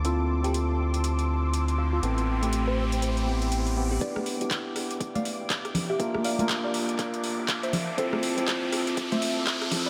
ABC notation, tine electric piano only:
X:1
M:4/4
L:1/16
Q:"Swing 16ths" 1/4=121
K:Ephr
V:1 name="Tine electric piano"
[CEFA]3 [CEFA]12- [CEFA] | [B,CEA]3 [A,CEG]6- [A,CEG] [B,CEG]4 [B,CEG]2 | [B,DEG]3 [B,DEG]12- [B,DEG] | [_B,DF_B]3 [B,DFB]8- [B,DFB]3 z2 |
[CEFA]3 [CEFA]12- [CEFA] |]